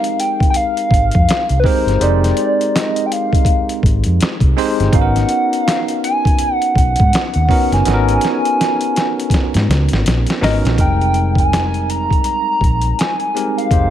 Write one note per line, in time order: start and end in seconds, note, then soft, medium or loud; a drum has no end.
0.00 0.44 G#3 medium
0.00 0.44 C4 medium
0.00 0.45 D#4 medium
0.00 0.45 G4 medium
0.00 0.45 A#4 medium
0.00 0.21 F5 loud
0.00 closed hi-hat medium
0.20 0.50 G5 loud
0.20 closed hi-hat medium
0.40 kick medium
0.40 closed hi-hat soft
0.50 0.58 G5 medium
0.50 closed hi-hat medium
0.56 1.59 F5 loud
0.77 closed hi-hat soft
0.91 1.09 G#1 medium
0.91 kick medium
0.91 closed hi-hat medium
1.11 1.26 F2 loud
1.11 kick loud
1.11 closed hi-hat soft
1.28 finger snap medium
1.28 muted fingered electric bass stroke soft
1.28 snare loud
1.28 closed hi-hat medium
1.49 1.61 C2 medium
1.49 closed hi-hat soft
1.60 1.67 B4 medium
1.64 1.98 G#3 medium
1.64 1.98 C4 medium
1.64 1.98 D#4 medium
1.64 1.98 G4 medium
1.64 1.99 A#4 medium
1.64 2.04 C5 medium
1.64 kick medium
1.64 open hi-hat medium
1.86 1.98 G1 medium
1.86 snare soft
1.86 closed hi-hat soft
2.00 2.31 F1 loud
2.00 3.36 G#3 medium
2.00 3.37 C4 medium
2.00 3.37 D#4 medium
2.00 3.37 G4 medium
2.00 3.37 C5 medium
2.00 2.69 D5 loud
2.00 closed hi-hat medium
2.24 snare soft
2.24 closed hi-hat medium
2.37 closed hi-hat medium
2.61 closed hi-hat medium
2.69 2.77 D5 medium
2.75 3.08 D#5 medium
2.75 finger snap medium
2.75 snare loud
2.75 closed hi-hat medium
2.96 closed hi-hat medium
3.06 3.14 G5 medium
3.12 3.84 F5 medium
3.12 closed hi-hat medium
3.33 kick medium
3.33 closed hi-hat soft
3.45 kick medium
3.45 closed hi-hat medium
3.69 closed hi-hat soft
3.83 4.02 G#1 medium
3.83 kick medium
3.83 closed hi-hat medium
4.04 4.18 F2 loud
4.04 closed hi-hat medium
4.21 finger snap loud
4.21 muted fingered electric bass stroke soft
4.21 snare loud
4.21 closed hi-hat loud
4.40 4.53 C2 medium
4.40 kick medium
4.40 closed hi-hat soft
4.56 4.90 G#3 loud
4.56 4.91 C4 medium
4.56 4.91 D#4 medium
4.56 4.91 G4 medium
4.56 4.91 C5 loud
4.56 open hi-hat medium
4.80 4.91 G1 loud
4.80 snare soft
4.80 closed hi-hat soft
4.93 5.23 G#1 loud
4.93 6.29 B3 medium
4.93 6.29 C#4 medium
4.93 6.30 D#4 medium
4.93 6.30 F#4 medium
4.93 5.02 G#4 medium
4.93 5.65 F#5 loud
4.93 kick loud
4.93 closed hi-hat medium
5.01 6.33 A#4 medium
5.16 snare soft
5.16 closed hi-hat medium
5.29 closed hi-hat medium
5.53 closed hi-hat medium
5.65 6.00 F5 loud
5.65 finger snap medium
5.65 snare loud
5.65 closed hi-hat medium
5.88 closed hi-hat medium
6.04 6.55 G#5 loud
6.04 closed hi-hat medium
6.25 kick loud
6.25 closed hi-hat soft
6.38 closed hi-hat medium
6.55 6.78 F#5 loud
6.62 closed hi-hat soft
6.76 6.94 B1 loud
6.76 7.75 F#5 loud
6.76 kick medium
6.76 closed hi-hat medium
6.96 closed hi-hat medium
7.00 7.11 G#2 loud
7.00 kick loud
7.13 finger snap loud
7.13 muted fingered electric bass stroke soft
7.13 snare loud
7.13 closed hi-hat loud
7.34 7.47 D#2 medium
7.34 closed hi-hat soft
7.49 7.83 B3 medium
7.49 7.83 C#4 medium
7.49 7.83 D#4 medium
7.49 7.84 F#4 medium
7.49 7.84 A#4 medium
7.49 kick medium
7.49 open hi-hat medium
7.72 7.83 F#1 loud
7.72 10.06 G#5 loud
7.72 snare soft
7.72 closed hi-hat soft
7.85 8.16 G#1 loud
7.85 9.22 B3 medium
7.85 9.22 C#4 medium
7.85 9.22 D#4 medium
7.85 9.23 F#4 medium
7.85 7.94 A4 medium
7.85 snare medium
7.85 closed hi-hat medium
7.94 9.26 A#4 medium
8.09 closed hi-hat medium
8.21 snare medium
8.21 closed hi-hat medium
8.45 closed hi-hat medium
8.61 snare medium
8.61 closed hi-hat medium
8.81 closed hi-hat medium
8.96 snare medium
8.96 closed hi-hat medium
9.20 closed hi-hat soft
9.30 kick medium
9.30 closed hi-hat medium
9.34 snare medium
9.54 9.66 G#2 loud
9.54 snare medium
9.54 closed hi-hat medium
9.69 9.87 C#2 loud
9.69 snare medium
9.69 closed hi-hat medium
9.89 10.03 G#1 medium
9.89 closed hi-hat soft
9.93 snare medium
10.06 10.24 A#1 medium
10.06 snare loud
10.06 closed hi-hat medium
10.27 snare medium
10.27 closed hi-hat soft
10.41 10.60 G#1 loud
10.41 10.76 B3 medium
10.41 10.76 C#4 medium
10.41 10.76 D#4 medium
10.41 10.76 F#4 medium
10.41 10.76 A#4 loud
10.41 10.58 D#5 medium
10.41 snare loud
10.41 open hi-hat medium
10.64 10.76 A#1 loud
10.64 snare medium
10.64 closed hi-hat soft
10.78 12.06 F1 medium
10.78 12.15 G3 medium
10.78 12.15 C4 medium
10.78 12.15 D#4 medium
10.78 12.15 A#4 medium
10.78 11.35 G5 loud
10.78 kick loud
10.78 closed hi-hat medium
10.84 12.18 G#3 medium
11.01 closed hi-hat soft
11.14 closed hi-hat medium
11.35 kick medium
11.35 closed hi-hat soft
11.40 11.92 G#5 loud
11.53 finger snap medium
11.53 snare loud
11.53 closed hi-hat medium
11.74 closed hi-hat soft
11.90 12.25 A#5 loud
11.90 closed hi-hat medium
12.11 kick medium
12.11 closed hi-hat soft
12.24 13.00 A#5 loud
12.24 closed hi-hat medium
12.61 12.91 A#1 medium
12.61 kick medium
12.61 closed hi-hat medium
12.81 closed hi-hat soft
12.99 13.57 G#5 medium
12.99 finger snap medium
12.99 snare loud
12.99 closed hi-hat medium
13.20 closed hi-hat soft
13.35 13.69 G#3 medium
13.35 13.69 C4 medium
13.35 13.69 D#4 medium
13.35 13.69 G4 medium
13.35 13.69 A#4 medium
13.35 closed hi-hat medium
13.58 13.90 F5 loud
13.58 closed hi-hat soft
13.71 13.90 F1 medium
13.71 13.90 G#3 medium
13.71 13.90 C4 medium
13.71 13.90 D#4 medium
13.71 13.90 G4 medium
13.71 13.90 C5 medium
13.71 kick loud
13.71 closed hi-hat medium